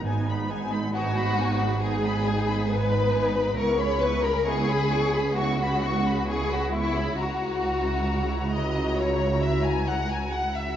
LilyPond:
<<
  \new Staff \with { instrumentName = "Violin section" } { \time 4/4 \key cis \dorian \tempo 4 = 67 gis''16 b''16 gis''16 b''16 gis''16 b''16 gis''16 b''16 gis''16 b''16 gis''16 b''16 gis''16 b''16 gis''16 b''16 | cis'''16 b''16 cis'''16 b''16 cis'''16 b''16 cis'''16 b''16 cis'''16 b''16 cis'''16 b''16 cis'''16 b''16 cis'''16 b''16 | ais''1 | }
  \new Staff \with { instrumentName = "Violin section" } { \time 4/4 \key cis \dorian r4 fis'4 gis'4 b'4 | ais'16 cis''16 b'16 ais'16 gis'4 fis'4 gis'16 fis'16 e'8 | fis'4. dis''8 cis''8 e''16 gis''16 fis''16 gis''16 fis''16 e''16 | }
  \new Staff \with { instrumentName = "Viola section" } { \time 4/4 \key cis \dorian <b dis'>16 <b dis'>16 <b dis'>16 <b dis'>16 <b dis'>16 <b dis'>16 <b dis'>16 <b dis'>16 <b dis'>16 <b dis'>16 <b dis'>16 <b dis'>16 <b dis'>16 <b dis'>16 <b dis'>16 <b dis'>16 | <b e'>16 <cis' gis'>16 <b e'>16 <cis' gis'>16 <b e'>16 <cis' gis'>16 <b e'>16 <cis' gis'>16 <b e'>16 <cis' gis'>16 <b e'>16 <cis' gis'>16 <b e'>16 <cis' gis'>16 <b e'>16 <cis' gis'>16 | <e' fis'>1 | }
  \new Staff \with { instrumentName = "Cello section" } { \clef bass \time 4/4 \key cis \dorian gis,1 | cis,1 | cis,1 | }
  \new Staff \with { instrumentName = "Double bass section" } { \clef bass \time 4/4 \key cis \dorian gis,,1 | cis,1 | cis,1 | }
>>